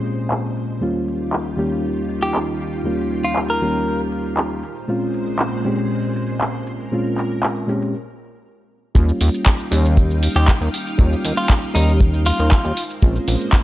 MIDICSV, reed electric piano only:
0, 0, Header, 1, 2, 480
1, 0, Start_track
1, 0, Tempo, 508475
1, 775, Time_signature, 4, 2, 24, 8
1, 12870, End_track
2, 0, Start_track
2, 0, Title_t, "Reed electric piano"
2, 0, Program_c, 0, 4
2, 0, Note_on_c, 0, 46, 78
2, 0, Note_on_c, 0, 56, 68
2, 0, Note_on_c, 0, 60, 67
2, 0, Note_on_c, 0, 61, 71
2, 0, Note_on_c, 0, 67, 77
2, 742, Note_off_c, 0, 46, 0
2, 744, Note_off_c, 0, 56, 0
2, 747, Note_off_c, 0, 60, 0
2, 749, Note_off_c, 0, 61, 0
2, 752, Note_off_c, 0, 67, 0
2, 762, Note_on_c, 0, 39, 73
2, 770, Note_on_c, 0, 55, 68
2, 770, Note_on_c, 0, 58, 65
2, 778, Note_on_c, 0, 61, 66
2, 783, Note_on_c, 0, 65, 83
2, 1461, Note_off_c, 0, 39, 0
2, 1465, Note_off_c, 0, 55, 0
2, 1465, Note_off_c, 0, 58, 0
2, 1469, Note_off_c, 0, 61, 0
2, 1471, Note_off_c, 0, 65, 0
2, 1481, Note_on_c, 0, 39, 75
2, 1486, Note_on_c, 0, 55, 67
2, 1492, Note_on_c, 0, 58, 69
2, 1495, Note_on_c, 0, 61, 65
2, 1500, Note_on_c, 0, 67, 83
2, 2660, Note_off_c, 0, 39, 0
2, 2663, Note_off_c, 0, 55, 0
2, 2666, Note_off_c, 0, 58, 0
2, 2668, Note_off_c, 0, 61, 0
2, 2670, Note_off_c, 0, 67, 0
2, 2685, Note_on_c, 0, 39, 76
2, 2695, Note_on_c, 0, 55, 68
2, 2696, Note_on_c, 0, 58, 68
2, 2703, Note_on_c, 0, 61, 67
2, 2707, Note_on_c, 0, 65, 79
2, 3383, Note_off_c, 0, 39, 0
2, 3387, Note_off_c, 0, 55, 0
2, 3388, Note_off_c, 0, 58, 0
2, 3391, Note_off_c, 0, 61, 0
2, 3394, Note_off_c, 0, 65, 0
2, 3409, Note_on_c, 0, 39, 77
2, 3417, Note_on_c, 0, 55, 69
2, 3419, Note_on_c, 0, 58, 70
2, 3422, Note_on_c, 0, 61, 68
2, 3428, Note_on_c, 0, 67, 83
2, 4358, Note_off_c, 0, 39, 0
2, 4362, Note_off_c, 0, 55, 0
2, 4363, Note_off_c, 0, 58, 0
2, 4365, Note_off_c, 0, 61, 0
2, 4368, Note_off_c, 0, 67, 0
2, 4606, Note_on_c, 0, 46, 76
2, 4610, Note_on_c, 0, 56, 70
2, 4615, Note_on_c, 0, 60, 68
2, 4619, Note_on_c, 0, 61, 69
2, 4623, Note_on_c, 0, 65, 86
2, 5303, Note_off_c, 0, 46, 0
2, 5305, Note_off_c, 0, 56, 0
2, 5307, Note_off_c, 0, 60, 0
2, 5310, Note_off_c, 0, 61, 0
2, 5312, Note_off_c, 0, 65, 0
2, 5330, Note_on_c, 0, 46, 78
2, 5333, Note_on_c, 0, 56, 70
2, 5337, Note_on_c, 0, 60, 72
2, 5341, Note_on_c, 0, 61, 68
2, 5347, Note_on_c, 0, 67, 85
2, 6505, Note_off_c, 0, 46, 0
2, 6506, Note_off_c, 0, 56, 0
2, 6508, Note_off_c, 0, 60, 0
2, 6510, Note_off_c, 0, 61, 0
2, 6513, Note_off_c, 0, 67, 0
2, 6529, Note_on_c, 0, 46, 75
2, 6535, Note_on_c, 0, 56, 75
2, 6537, Note_on_c, 0, 60, 72
2, 6542, Note_on_c, 0, 61, 73
2, 6548, Note_on_c, 0, 65, 81
2, 7224, Note_off_c, 0, 46, 0
2, 7228, Note_off_c, 0, 56, 0
2, 7228, Note_off_c, 0, 60, 0
2, 7231, Note_off_c, 0, 61, 0
2, 7234, Note_off_c, 0, 65, 0
2, 7244, Note_on_c, 0, 46, 77
2, 7251, Note_on_c, 0, 56, 72
2, 7255, Note_on_c, 0, 60, 68
2, 7260, Note_on_c, 0, 61, 72
2, 7266, Note_on_c, 0, 67, 84
2, 7490, Note_off_c, 0, 46, 0
2, 7493, Note_off_c, 0, 56, 0
2, 7495, Note_off_c, 0, 60, 0
2, 7498, Note_off_c, 0, 61, 0
2, 7500, Note_off_c, 0, 67, 0
2, 8447, Note_on_c, 0, 55, 83
2, 8452, Note_on_c, 0, 58, 76
2, 8458, Note_on_c, 0, 61, 75
2, 8464, Note_on_c, 0, 65, 92
2, 9143, Note_off_c, 0, 55, 0
2, 9146, Note_off_c, 0, 58, 0
2, 9149, Note_off_c, 0, 61, 0
2, 9152, Note_off_c, 0, 65, 0
2, 9168, Note_on_c, 0, 55, 83
2, 9176, Note_on_c, 0, 58, 76
2, 9180, Note_on_c, 0, 61, 79
2, 9187, Note_on_c, 0, 67, 93
2, 10344, Note_off_c, 0, 55, 0
2, 10348, Note_off_c, 0, 58, 0
2, 10350, Note_off_c, 0, 61, 0
2, 10354, Note_off_c, 0, 67, 0
2, 10364, Note_on_c, 0, 55, 89
2, 10370, Note_on_c, 0, 58, 78
2, 10376, Note_on_c, 0, 61, 78
2, 10386, Note_on_c, 0, 65, 93
2, 11062, Note_off_c, 0, 55, 0
2, 11065, Note_off_c, 0, 58, 0
2, 11068, Note_off_c, 0, 61, 0
2, 11073, Note_off_c, 0, 65, 0
2, 11084, Note_on_c, 0, 55, 83
2, 11091, Note_on_c, 0, 58, 78
2, 11097, Note_on_c, 0, 61, 77
2, 11105, Note_on_c, 0, 67, 89
2, 12036, Note_off_c, 0, 55, 0
2, 12039, Note_off_c, 0, 58, 0
2, 12042, Note_off_c, 0, 61, 0
2, 12046, Note_off_c, 0, 67, 0
2, 12293, Note_on_c, 0, 56, 88
2, 12297, Note_on_c, 0, 60, 77
2, 12304, Note_on_c, 0, 61, 80
2, 12310, Note_on_c, 0, 65, 93
2, 12870, Note_off_c, 0, 56, 0
2, 12870, Note_off_c, 0, 60, 0
2, 12870, Note_off_c, 0, 61, 0
2, 12870, Note_off_c, 0, 65, 0
2, 12870, End_track
0, 0, End_of_file